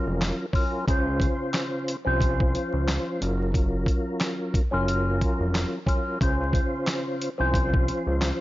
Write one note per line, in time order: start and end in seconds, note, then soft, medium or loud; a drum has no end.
0.00 0.45 F#3 medium
0.00 0.46 C#4 medium
0.00 0.46 F4 medium
0.00 0.46 A#4 loud
0.07 0.32 F1 medium
0.22 snare loud
0.22 clap medium
0.22 closed hi-hat loud
0.53 0.85 F#3 medium
0.53 0.85 C#4 medium
0.53 0.85 F4 medium
0.53 0.86 A#4 medium
0.53 kick loud
0.53 open hi-hat medium
0.87 1.27 C#2 loud
0.87 1.96 C#3 loud
0.87 1.96 C#4 medium
0.87 1.96 F4 medium
0.87 1.97 C5 loud
0.87 kick loud
0.87 closed hi-hat medium
1.20 kick medium
1.20 closed hi-hat medium
1.54 snare loud
1.54 clap medium
1.54 closed hi-hat loud
1.88 closed hi-hat medium
2.05 2.57 C2 medium
2.05 3.20 F3 medium
2.05 3.20 C#4 medium
2.05 3.21 F4 medium
2.05 3.22 C5 loud
2.20 kick medium
2.20 closed hi-hat medium
2.40 kick medium
2.55 closed hi-hat medium
2.73 2.98 C#2 medium
2.88 snare loud
2.88 clap medium
2.88 closed hi-hat loud
3.20 3.86 F#1 loud
3.20 3.51 F#3 loud
3.20 3.52 C#4 medium
3.20 3.52 F4 medium
3.20 3.53 A#4 loud
3.20 closed hi-hat medium
3.52 4.61 F#3 loud
3.52 4.62 C#4 medium
3.52 4.62 F4 medium
3.52 4.63 A#4 loud
3.52 kick loud
3.52 closed hi-hat medium
3.86 kick medium
3.86 closed hi-hat medium
4.21 snare loud
4.21 clap medium
4.21 closed hi-hat loud
4.54 kick loud
4.54 closed hi-hat medium
4.71 5.24 F#1 medium
4.71 5.78 F#3 medium
4.71 5.79 C#4 medium
4.71 5.79 F4 medium
4.71 5.80 A#4 loud
4.88 closed hi-hat medium
5.21 kick medium
5.21 closed hi-hat medium
5.40 5.65 F1 medium
5.55 snare loud
5.55 clap medium
5.55 closed hi-hat medium
5.86 6.18 F#3 medium
5.86 6.18 C#4 medium
5.86 6.19 F4 medium
5.86 6.19 A#4 medium
5.86 kick loud
5.86 closed hi-hat medium
6.21 6.60 C#2 loud
6.21 7.29 C#3 loud
6.21 7.29 C#4 medium
6.21 7.30 F4 medium
6.21 7.30 C5 loud
6.21 kick loud
6.21 closed hi-hat medium
6.53 kick medium
6.53 closed hi-hat medium
6.87 snare loud
6.87 clap medium
6.87 closed hi-hat loud
7.22 closed hi-hat medium
7.38 7.90 C2 medium
7.38 8.41 F3 medium
7.38 8.41 C#4 medium
7.38 8.41 F4 loud
7.38 8.41 C5 loud
7.54 kick loud
7.54 closed hi-hat medium
7.74 kick medium
7.88 closed hi-hat medium
8.07 8.32 C#2 loud
8.22 snare loud
8.22 clap medium
8.22 closed hi-hat loud